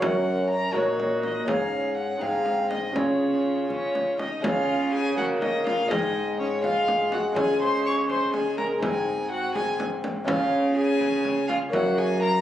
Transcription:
Already playing: C#4
0.00 F#2 C#4 F#4 A#4 F#5, frame drum
0.50 A#5
0.71 A#2 C#4 D#4 F#4 A#4 C#5
0.75 frame drum
1.00 frame drum
1.23 D#5, frame drum
1.44 G#2 C#4 D#4 G#4 F5, frame drum
1.97 F#5
2.18 G#2 C4 D#4 G#4 F5, frame drum
2.46 frame drum
2.71 D#5, frame drum
2.91 C#3 C#4 F4 G#4
2.96 C#3 C#5, frame drum
3.69 C#4 C#5, frame drum
3.95 frame drum
4.18 D#4 D#5, frame drum
4.40 C#3 G#3 C#4 F4 G#4 F5, frame drum
4.44 C#3
4.92 G#4 G#5
5.17 A#3 F#4 F#5, frame drum
5.41 D#4 D#5, frame drum
5.66 F4 F5, frame drum
5.87 G#2 G#3 C4 D#4 G#4 D#5, frame drum
6.39 C#4 C#5
6.63 F4 F5, frame drum
6.88 frame drum
7.12 F#4 F#5, frame drum
7.33 C#3 G#3 C#4 F4, frame drum
7.37 C#3 G#4 G#5
7.61 C5 C6
7.85 C#5 C#6
8.09 C5 C6, frame drum
8.33 G#4 G#5, frame drum
8.58 A#4 A#5, frame drum
8.78 G#2 G#3 C4 D#4 G#5
8.82 C4 G#4, frame drum
9.31 F#4 F#5
9.55 G#4 G#5, frame drum
9.80 frame drum
10.04 frame drum
10.24 C#3 G#3 C#4 F4 F5, frame drum
10.76 G#4 G#5
11.01 frame drum
11.25 frame drum
11.48 F4 F5, frame drum
11.70 F#2 A#3 C#4 F#4 F#5, frame drum
11.97 G#4 G#5
12.21 A#4 A#5

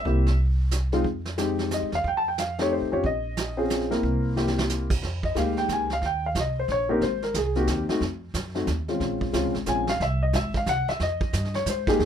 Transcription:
Already playing: E5
0.05 C2 A#3 C4 E4 G4, brush sweep, kick
0.26 snare
0.71 snare, hi-hat pedal
0.92 G#3 C4 D#4 F4, snare
1.04 F2, brush sweep, kick
1.25 snare
1.38 G#3 C4 D#4 G4, snare, hi-hat pedal
1.59 snare
1.71 D#5, snare, hi-hat pedal
1.92 E2 F5, snare
2.04 F2 G5, brush sweep, kick
2.17 A5
2.28 G5
2.38 F5, snare, hi-hat pedal
2.59 A3 C4 D#4 G4 C#5, snare
2.73 C5
2.81 A2
2.92 F2 C4 C#4 F4 G4 C#5
3.03 A#1 D#5, brush sweep, kick
3.37 snare, hi-hat pedal
3.57 C4 C#4 F4 G#4
3.70 snare, hi-hat pedal
3.81 snare
3.91 A#3 C4 E4 A#4, snare
3.93 snare
4.03 C2, brush sweep, kick
4.36 A#3 C4 E4 G4, snare
4.48 snare
4.58 snare
4.69 snare, hi-hat pedal
4.90 kick, crash
5.02 F2, brush sweep, kick, snare
5.23 D#5, kick
5.35 D2 G#3 A#3 D#4 G4 F5, kick, snare, hi-hat pedal
5.57 G5, snare
5.69 C#2 G#5, kick, snare, hi-hat pedal
5.90 F5, snare
6.02 D#2, brush sweep, kick, snare
6.06 G5
6.26 F5
6.35 C2, kick, snare, hi-hat pedal
6.40 D#5
6.59 C5
6.68 A#1 C#5, kick, snare
6.89 A#3 C4 D#4 G4 A#4
7.01 G#1 C5, brush sweep, kick, snare
7.22 A#4, snare
7.34 C2 G#4, kick, snare, hi-hat pedal
7.55 A#3 C4 D#4 F#4 G4, snare
7.67 D#2 G4, kick, snare, hi-hat pedal
7.89 A3 C4 D#4 F#4, muted upright bass stroke, snare
8.01 F2, brush sweep, kick, snare
8.34 F#2, kick, snare, hi-hat pedal
8.55 A3 C4 D#4 F#4, snare
8.67 D#2, kick, snare, hi-hat pedal
8.88 G#3 C4 C#4 F4, snare
9.00 A#1, brush sweep, kick, snare
9.21 kick
9.33 C#2 G#3 C4 C#4 F4, kick, snare, hi-hat pedal
9.45 A#1
9.54 G#1, snare
9.66 A#1 G#3 C4 C#4 F4 G#5, kick, snare, hi-hat pedal
9.87 F5, snare
10.00 C2 E5, brush sweep, kick, snare
10.23 D#5
10.33 G#1 E5, kick, snare, hi-hat pedal
10.54 F5, kick, snare
10.66 C2 F#5, kick, snare, hi-hat pedal
10.88 E5, muted upright bass stroke, snare
11.00 F2 D#5, brush sweep, kick, snare
11.21 kick
11.33 G2, kick, snare, hi-hat pedal
11.45 snare
11.54 C#5, snare
11.56 snare
11.66 G#2 C5, kick, snare, hi-hat pedal
11.87 G#3 A#3 D#4 G4 G#4, kick, snare
12.00 F2, brush sweep, kick, snare

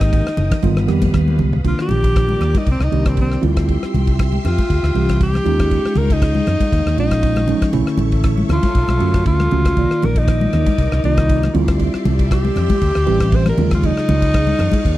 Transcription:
Already playing: D#3 G#3 A#3 D#4 G4 A#4 G5 D#6
0.01 G#1, kick, cross-stick, ride
0.13 kick, ride
0.27 cross-stick
0.37 F#1, ride, low conga
0.51 kick, cross-stick, ride, low conga
0.62 G1 D#3 G3 B3 F4 B4 F5, kick, ride, high conga
0.77 cross-stick
0.88 F2 D#3 G3 B3 G4, cross-stick, ride
1.02 kick, ride, high conga
1.14 D#2, kick, cross-stick, ride
1.28 high conga
1.39 C#2, kick, low conga
1.53 floor tom
1.63 C2 D#3 A#3 D4 F4 A#4 D5 G5 D6, kick, ride
1.68 F4
1.79 G4, cross-stick
1.89 A#1, ride, high conga, low conga
2.04 kick, ride
2.16 kick, cross-stick, ride
2.29 high conga
2.41 D#2, cross-stick, ride, low conga
2.54 D#4, kick, ride, high conga
2.67 C2, kick, ride
2.71 C4
2.80 C2, cross-stick
2.84 D#4
2.92 C2 D#3 A#3 D4 G4, ride
3.05 C4, kick, cross-stick, ride
3.17 kick, ride
3.21 C4
3.32 cross-stick
3.41 D2 G3 C4 E4 F4 G4 E5 C6, ride, low conga
3.57 kick, cross-stick, ride
3.69 kick, ride
3.83 muted fretless electric bass stroke, cross-stick
3.94 C2, ride, high conga, low conga
4.07 kick, ride
4.19 kick, cross-stick, ride
4.33 high conga
4.45 F2 F4, cross-stick, ride, low conga
4.58 muted fretless electric bass stroke, kick, ride, high conga
4.70 D2, kick, ride
4.83 D2, cross-stick
4.95 C2 E3 G3 C4 G4, ride
5.09 kick, cross-stick, ride
5.21 G4, kick, ride
5.34 cross-stick, high conga
5.44 D#2 G#3 C#4 D#4 F4 F5 C#6, ride, low conga
5.59 kick, cross-stick, ride
5.71 kick, ride
5.85 muted fretless electric bass stroke, cross-stick
5.96 C#2 A#4, ride, high conga, low conga
6.10 D#4, kick, ride
6.22 kick, cross-stick, ride
6.35 high conga
6.47 F#2, cross-stick, ride, low conga
6.60 muted fretless electric bass stroke, kick, ride, high conga
6.72 D#2, kick, ride
6.86 D#2, cross-stick
6.97 A#1 F3 G#3 C#4 D#4 F4, ride
7.11 kick, cross-stick, ride
7.23 kick, ride
7.36 cross-stick, high conga
7.48 F3 G#3 C#4 D#4, ride, low conga
7.62 muted fretless electric bass stroke, kick, cross-stick, ride
7.72 B1 D3 A3 C#4 E4 A4 C#5 E5, kick, ride, low conga
7.87 cross-stick
7.98 A1, ride, high conga, low conga
8.12 kick, ride
8.23 kick, cross-stick, ride
8.37 high conga
8.49 D2 F4, cross-stick, ride, low conga
8.63 kick, ride, high conga
8.75 B1, kick, ride
8.88 B1, cross-stick, high conga
8.99 F#2 D3 A3 C#4 F#4, ride
9.14 kick, cross-stick, ride
9.26 D2 F4, kick, ride
9.40 cross-stick, high conga
9.51 C#2 D3 A3 C#4 F#4, ride, low conga
9.65 kick, cross-stick, ride
9.77 C2 D#3 A#3 D#4 F4 A#4 D5 D6, kick, ride
9.91 muted fretless electric bass stroke, cross-stick
10.02 A#1 A#4, ride, high conga, low conga
10.16 D#4, kick, ride
10.28 kick, cross-stick, ride
10.41 high conga
10.53 D#2, cross-stick, ride, low conga
10.66 muted fretless electric bass stroke, kick, ride, high conga
10.78 C2, kick, ride
10.92 C2, cross-stick
11.04 C2 D#3 A#3 D#4 F4 D5, ride
11.17 kick, cross-stick, ride
11.29 kick, ride
11.43 cross-stick, high conga
11.54 D2 G3 C4 E4 F4 G4 E5 C6, ride, low conga
11.68 kick, cross-stick, ride
11.79 kick, ride
11.94 muted fretless electric bass stroke, cross-stick
12.05 C2, ride, high conga, low conga
12.19 kick, ride
12.31 G4, kick, cross-stick, ride
12.45 high conga
12.56 F2, cross-stick, ride, low conga
12.69 muted fretless electric bass stroke, kick, ride, high conga
12.81 D2, kick, ride
12.95 D2, cross-stick
13.06 A1 E3 G3 C4 G4, ride
13.20 kick, cross-stick, ride
13.32 C5, kick, ride
13.46 A#4, cross-stick, high conga
13.57 D#2 C#3 F#3 G#3 F4 G#4 F5 C#6, ride, low conga
13.71 F4, kick, cross-stick, ride
13.83 D#4, kick, ride
13.97 muted fretless electric bass stroke, cross-stick
14.09 C#2, ride, high conga, low conga
14.22 kick, ride
14.34 kick, cross-stick, ride
14.47 high conga
14.59 F#2, cross-stick, ride, low conga
14.72 muted fretless electric bass stroke, kick, ride, high conga
14.85 D#2, kick, ride

